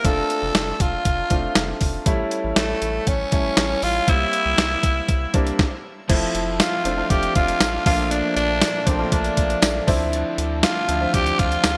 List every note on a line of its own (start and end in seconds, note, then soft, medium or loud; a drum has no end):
0.04 0.23 F1 loud
0.04 0.73 A3 medium
0.04 0.73 C4 medium
0.04 0.74 D4 medium
0.04 0.74 F4 medium
0.04 0.83 A4 loud
0.04 kick loud
0.04 closed hi-hat medium
0.30 closed hi-hat medium
0.43 0.52 F1 medium
0.55 0.73 F1 loud
0.55 snare loud
0.55 clap medium
0.55 closed hi-hat medium
0.80 0.98 F1 loud
0.80 1.82 F4 medium
0.80 kick loud
0.80 closed hi-hat medium
1.05 1.24 F1 loud
1.05 kick medium
1.05 closed hi-hat medium
1.30 1.49 F1 loud
1.30 1.82 A3 medium
1.30 1.82 C4 medium
1.30 1.82 D4 medium
1.30 1.83 F4 medium
1.30 kick medium
1.30 closed hi-hat medium
1.55 1.74 F1 loud
1.55 snare loud
1.55 clap medium
1.55 closed hi-hat medium
1.81 1.99 F1 medium
1.81 kick medium
1.81 open hi-hat medium
2.06 2.24 A1 loud
2.06 2.75 G3 medium
2.06 2.75 A3 medium
2.06 2.75 C#4 medium
2.06 2.76 E4 medium
2.06 kick loud
2.06 closed hi-hat medium
2.31 closed hi-hat medium
2.44 2.53 A1 loud
2.56 2.75 A1 loud
2.56 3.09 A3 medium
2.56 snare loud
2.56 clap medium
2.56 closed hi-hat medium
2.82 3.00 A1 medium
2.82 closed hi-hat medium
3.07 3.25 A1 loud
3.07 3.85 C#4 loud
3.07 kick medium
3.07 closed hi-hat medium
3.32 3.50 A1 loud
3.32 3.84 G3 medium
3.32 3.84 A3 medium
3.32 3.84 C#4 medium
3.32 3.84 E4 medium
3.32 kick medium
3.32 closed hi-hat medium
3.57 3.76 A1 loud
3.57 snare loud
3.57 clap medium
3.57 closed hi-hat medium
3.82 4.01 A1 loud
3.82 4.11 F4 loud
3.82 open hi-hat medium
4.07 4.26 C2 loud
4.07 4.77 G3 medium
4.07 4.77 A#3 medium
4.07 4.77 C4 medium
4.07 4.77 E4 medium
4.07 5.60 E4 loud
4.07 kick loud
4.07 closed hi-hat medium
4.33 closed hi-hat medium
4.46 4.55 C2 medium
4.58 4.76 C2 loud
4.58 snare loud
4.58 clap medium
4.58 closed hi-hat medium
4.83 5.02 C2 loud
4.83 kick medium
4.83 closed hi-hat medium
5.09 5.27 C2 loud
5.09 kick medium
5.09 closed hi-hat medium
5.33 5.52 C2 loud
5.33 5.59 G3 medium
5.33 5.59 A#3 medium
5.33 5.59 C4 medium
5.33 5.59 D4 loud
5.33 kick medium
5.33 closed hi-hat medium
5.47 closed hi-hat medium
5.59 kick loud
5.59 snare medium
6.08 6.28 F1 loud
6.08 7.09 F3 medium
6.08 6.61 F3 medium
6.08 6.61 A3 medium
6.08 6.61 C4 medium
6.08 7.10 C4 medium
6.08 6.62 E4 medium
6.08 kick loud
6.08 closed hi-hat medium
6.08 crash medium
6.13 7.12 F4 loud
6.35 6.62 F1 loud
6.35 closed hi-hat medium
6.60 7.12 F4 medium
6.60 snare loud
6.60 clap medium
6.60 closed hi-hat medium
6.60 tambourine medium
6.85 7.03 F1 loud
6.85 6.94 F3 medium
6.85 6.94 A3 medium
6.85 6.94 C4 medium
6.85 6.94 D4 medium
6.85 closed hi-hat medium
6.97 7.67 F3 medium
6.97 7.67 A3 medium
6.97 7.67 C4 medium
6.97 7.67 F4 medium
7.09 7.28 F1 medium
7.09 7.88 F3 medium
7.09 7.84 C4 medium
7.09 9.87 F4 medium
7.09 7.35 G4 loud
7.09 kick medium
7.09 closed hi-hat medium
7.23 closed hi-hat soft
7.35 7.54 F1 loud
7.35 7.83 F4 loud
7.35 kick medium
7.35 closed hi-hat medium
7.48 closed hi-hat medium
7.61 7.79 A1 medium
7.61 snare loud
7.61 clap medium
7.61 closed hi-hat medium
7.61 tambourine medium
7.85 8.22 A#1 loud
7.85 8.67 F3 medium
7.85 8.11 F3 soft
7.85 8.67 A3 medium
7.85 8.11 A#3 medium
7.85 8.67 A#3 medium
7.85 8.67 D4 medium
7.85 8.13 F4 loud
7.85 kick loud
7.85 open hi-hat medium
8.10 9.10 A#2 medium
8.10 9.13 F3 medium
8.10 8.36 D4 loud
8.10 closed hi-hat medium
8.14 9.13 A#3 medium
8.36 8.64 A#1 loud
8.36 8.88 D4 loud
8.36 closed hi-hat medium
8.62 snare loud
8.62 clap medium
8.62 closed hi-hat medium
8.62 tambourine medium
8.86 9.05 A#1 medium
8.86 8.95 F3 medium
8.86 8.95 A3 medium
8.86 8.96 A#3 medium
8.86 9.14 C4 medium
8.86 8.96 D4 medium
8.86 kick loud
8.86 closed hi-hat medium
8.99 9.68 F3 medium
8.99 9.68 A3 medium
8.99 9.69 A#3 medium
8.99 9.69 F4 medium
9.11 9.30 A#1 loud
9.11 9.87 A#2 medium
9.11 10.12 F3 medium
9.11 9.89 A#3 medium
9.11 9.88 D4 medium
9.11 kick medium
9.11 closed hi-hat medium
9.24 closed hi-hat soft
9.37 9.56 A#1 loud
9.37 kick medium
9.37 closed hi-hat medium
9.50 closed hi-hat medium
9.63 9.81 A#1 medium
9.63 snare loud
9.63 clap medium
9.63 closed hi-hat medium
9.63 tambourine medium
9.87 10.24 D2 loud
9.87 10.68 F3 medium
9.87 10.13 A3 soft
9.87 10.68 C4 medium
9.87 10.13 D4 medium
9.87 10.69 D4 medium
9.87 10.69 E4 loud
9.87 kick loud
9.87 open hi-hat medium
10.12 11.13 D3 loud
10.12 11.14 A3 medium
10.12 closed hi-hat medium
10.17 11.16 D4 medium
10.38 10.65 D2 loud
10.38 closed hi-hat medium
10.63 11.16 F4 loud
10.63 snare loud
10.63 clap medium
10.63 closed hi-hat medium
10.63 tambourine medium
10.88 11.07 D2 medium
10.88 10.97 F3 medium
10.88 10.97 C4 medium
10.88 10.97 D4 medium
10.88 10.98 E4 medium
10.88 closed hi-hat medium
11.01 11.70 F3 medium
11.01 11.70 C4 medium
11.01 11.70 D4 medium
11.01 11.71 E5 medium
11.13 11.32 D2 loud
11.13 11.77 D3 medium
11.13 11.77 A3 medium
11.13 11.77 D4 medium
11.13 11.41 G4 loud
11.13 kick medium
11.13 closed hi-hat medium
11.26 closed hi-hat medium
11.39 11.57 D2 loud
11.39 11.77 F4 loud
11.39 kick medium
11.39 closed hi-hat medium
11.52 closed hi-hat medium
11.64 11.77 D2 medium
11.64 snare loud
11.64 clap medium
11.64 closed hi-hat loud
11.64 tambourine medium